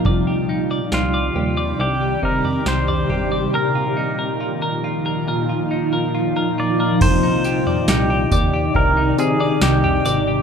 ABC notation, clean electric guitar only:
X:1
M:4/4
L:1/16
Q:1/4=69
K:Cm
V:1 name="Clean electric guitar"
[C,d] G E d G d G d [C,d] G E d G d G d | [B,,B] F E B F B F B [B,,B] F E B F B F B | C, E G d E G d G C, E2 d E G d G |]